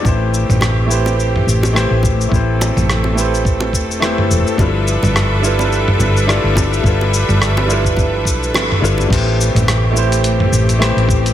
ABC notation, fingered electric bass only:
X:1
M:4/4
L:1/16
Q:"Swing 16ths" 1/4=106
K:Am
V:1 name="Fingered electric bass" clef=bass
A,,,3 A,,,6- A,,, A,,,3 A,,,3 | A,,,3 A,,,6- A,,, E,,,4 E,,, z | G,,,3 G,,,6- G,,, G,,,3 G,,,3 | G,,,3 G,,,6- G,,, B,,,2 G,,,2 G,,,2 |
A,,,3 A,,,6- A,,, A,,,3 A,,,3 |]